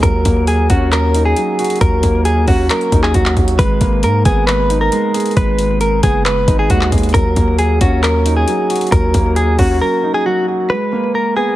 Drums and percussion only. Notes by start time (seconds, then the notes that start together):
0.03 kick, closed hi-hat
0.25 kick, closed hi-hat
0.47 closed hi-hat
0.70 kick, closed hi-hat
0.92 clap, closed hi-hat
1.14 closed hi-hat
1.36 closed hi-hat
1.59 closed hi-hat
1.64 closed hi-hat
1.70 closed hi-hat
1.76 closed hi-hat
1.81 kick, closed hi-hat
2.03 kick, closed hi-hat
2.25 closed hi-hat
2.48 kick, open hi-hat
2.70 clap, closed hi-hat
2.81 closed hi-hat
2.92 kick, closed hi-hat
3.03 clap
3.14 kick, closed hi-hat
3.26 clap
3.37 kick, closed hi-hat
3.48 closed hi-hat
3.59 kick, closed hi-hat
3.81 kick, closed hi-hat
4.03 closed hi-hat
4.25 kick, closed hi-hat
4.48 clap, closed hi-hat
4.70 closed hi-hat
4.92 closed hi-hat
5.14 closed hi-hat
5.20 closed hi-hat
5.26 closed hi-hat
5.31 closed hi-hat
5.37 kick, closed hi-hat
5.59 closed hi-hat
5.81 closed hi-hat
6.03 kick, closed hi-hat
6.26 clap, closed hi-hat
6.48 kick, closed hi-hat
6.70 kick, closed hi-hat
6.81 clap
6.92 kick, closed hi-hat
6.98 closed hi-hat
7.03 closed hi-hat
7.09 closed hi-hat
7.14 kick, closed hi-hat
7.36 kick, closed hi-hat
7.59 closed hi-hat
7.81 kick, closed hi-hat
8.03 clap, closed hi-hat
8.26 closed hi-hat
8.48 closed hi-hat
8.70 closed hi-hat
8.76 closed hi-hat
8.81 closed hi-hat
8.87 closed hi-hat
8.92 kick, closed hi-hat
9.14 kick, closed hi-hat
9.36 closed hi-hat
9.59 kick, open hi-hat